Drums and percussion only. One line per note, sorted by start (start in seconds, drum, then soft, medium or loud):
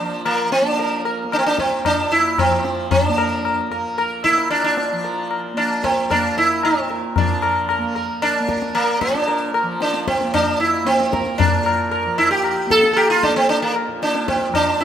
0.25 tabla na medium
0.52 tabla te medium
0.79 tabla tin medium
1.05 tabla na medium
1.32 tabla na medium
1.58 tabla ke soft
1.85 tabla na medium
1.85 tabla ge medium
2.12 tabla te soft
2.38 tabla na medium
2.38 tabla ge medium
2.65 tabla te medium
2.91 tabla tin medium
2.91 tabla ge medium
3.18 tabla na medium
3.45 tabla na medium
3.72 tabla na soft
3.98 tabla na medium
4.25 tabla ke soft
4.38 tabla te medium
4.51 tabla na medium
4.77 tabla te medium
5.04 tabla tin medium
5.31 tabla na medium
5.58 tabla na medium
5.84 tabla ke medium
6.11 tabla na medium
6.11 tabla ge medium
6.37 tabla te soft
6.63 tabla na medium
6.90 tabla te medium
7.16 tabla tin medium
7.16 tabla ge medium
7.42 tabla na medium
7.69 tabla na medium
7.95 tabla na medium
8.22 tabla na medium
8.49 tabla ke medium
8.62 tabla te medium
8.75 tabla na medium
9.01 tabla ke medium
9.15 tabla te medium
9.27 tabla tin medium
9.54 tabla na medium
9.81 tabla te medium
9.94 tabla te medium
10.08 tabla ke medium
10.21 tabla te medium
10.34 tabla na medium
10.34 tabla ge medium
10.60 tabla te soft
10.87 tabla te medium
11.00 tabla te medium
11.13 tabla ke medium
11.26 tabla te medium
11.40 tabla tin loud
11.40 tabla ge medium
11.66 tabla na medium
11.92 tabla na medium
12.18 tabla na medium
12.44 tabla na medium
12.71 tabla ke medium
12.83 tabla te medium
12.97 tabla na medium
13.23 tabla ke medium
13.36 tabla te medium
13.50 tabla tin medium
13.76 tabla na medium
14.02 tabla te medium
14.15 tabla te medium
14.28 tabla ke medium
14.41 tabla te medium
14.54 tabla na medium
14.54 tabla ge medium
14.80 tabla te medium